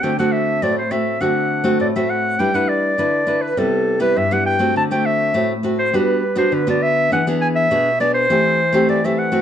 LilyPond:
<<
  \new Staff \with { instrumentName = "Clarinet" } { \time 4/4 \key g \major \tempo 4 = 102 g''16 fis''16 e''8 d''16 c''16 e''8 fis''4 d''16 e''16 fis''8 | g''16 fis''16 d''4~ d''16 b'16 a'8. b'16 e''16 fis''16 g''8 | a''16 g''16 e''8. r8 c''16 b'8. c''16 b'16 d''16 e''8 | fis''8 gis''16 e''8. d''16 c''4~ c''16 d''16 e''16 fis''8 | }
  \new Staff \with { instrumentName = "Nylon-string guitar" } { \time 4/4 \key g \major << { <a c' fis'>16 <a c' fis'>8. <a c' fis'>16 r16 <a c' fis'>8 <a c' fis'>8. <a c' fis'>8 <a c' fis'>8. | <d' e' b'>16 <d' e' b'>8. <d' e' b'>8 <d' e' b'>8 <g b e'>8. <g b e'>8 <g b e'>8 <a c' fis'>16~ | <a c' fis'>16 <a c' fis'>8. <a c' fis'>16 r16 <a c' fis'>8 <b d' fis'>8 r16 <b d' fis'>8 <b d' fis'>8. | <b d' gis'>16 <b d' gis'>8. <b d' gis'>16 r16 <b d' gis'>8 <a c' g'>8 r16 <a c' g'>8 <a c' g'>8 <a c' fis'>16 | } \\ { d4 a,4 d4 a,4 | g4 d4 c4 g,4 | d4 a,4 g4 d4 | e4 b,4 e4 e4 | } >> }
>>